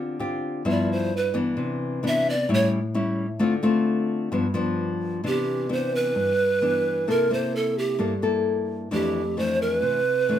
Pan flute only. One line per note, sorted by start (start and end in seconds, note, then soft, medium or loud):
0.70 0.89 D5 medium
0.92 1.18 C5 medium
1.17 1.37 B4 medium
2.08 2.31 E5 medium
2.30 2.51 D5 medium
2.54 2.66 C#5 medium
5.27 5.74 G4 medium
5.73 5.97 C5 medium
5.95 7.12 B4 medium
7.10 7.35 A#4 medium
7.33 7.57 C5 medium
7.56 7.80 A4 medium
7.78 8.23 G4 medium
8.94 9.40 G4 medium
9.39 9.61 C5 loud
9.62 9.75 A#4 loud
9.75 10.39 B4 loud